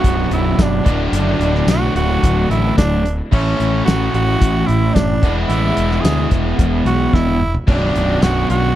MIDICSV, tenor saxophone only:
0, 0, Header, 1, 2, 480
1, 0, Start_track
1, 0, Tempo, 545455
1, 997, Time_signature, 4, 2, 24, 8
1, 7703, End_track
2, 0, Start_track
2, 0, Title_t, "Tenor saxophone"
2, 0, Program_c, 0, 66
2, 0, Note_on_c, 0, 66, 93
2, 252, Note_off_c, 0, 66, 0
2, 292, Note_on_c, 0, 64, 88
2, 547, Note_on_c, 0, 62, 96
2, 560, Note_off_c, 0, 64, 0
2, 892, Note_off_c, 0, 62, 0
2, 1020, Note_on_c, 0, 62, 83
2, 1492, Note_on_c, 0, 66, 92
2, 1505, Note_off_c, 0, 62, 0
2, 1720, Note_off_c, 0, 66, 0
2, 1726, Note_on_c, 0, 66, 107
2, 2170, Note_off_c, 0, 66, 0
2, 2204, Note_on_c, 0, 64, 93
2, 2426, Note_off_c, 0, 64, 0
2, 2443, Note_on_c, 0, 62, 99
2, 2777, Note_off_c, 0, 62, 0
2, 2932, Note_on_c, 0, 61, 88
2, 3374, Note_off_c, 0, 61, 0
2, 3389, Note_on_c, 0, 66, 94
2, 3618, Note_off_c, 0, 66, 0
2, 3651, Note_on_c, 0, 66, 107
2, 4108, Note_on_c, 0, 64, 97
2, 4121, Note_off_c, 0, 66, 0
2, 4350, Note_on_c, 0, 62, 102
2, 4363, Note_off_c, 0, 64, 0
2, 4716, Note_off_c, 0, 62, 0
2, 4821, Note_on_c, 0, 64, 92
2, 5288, Note_on_c, 0, 68, 92
2, 5301, Note_off_c, 0, 64, 0
2, 5544, Note_off_c, 0, 68, 0
2, 6043, Note_on_c, 0, 66, 101
2, 6283, Note_on_c, 0, 64, 111
2, 6296, Note_off_c, 0, 66, 0
2, 6640, Note_off_c, 0, 64, 0
2, 6763, Note_on_c, 0, 62, 94
2, 7243, Note_on_c, 0, 66, 107
2, 7256, Note_off_c, 0, 62, 0
2, 7479, Note_off_c, 0, 66, 0
2, 7485, Note_on_c, 0, 66, 106
2, 7703, Note_off_c, 0, 66, 0
2, 7703, End_track
0, 0, End_of_file